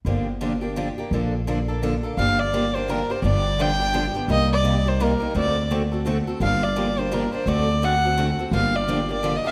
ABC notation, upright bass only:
X:1
M:3/4
L:1/8
Q:"Swing" 1/4=170
K:Gm
V:1 name="Upright bass" clef=bass
G,,,6 | B,,,6 | G,,,6 | G,,,6 |
C,,6 | D,,6 | G,,,6 | D,,6 |
G,,,6 |]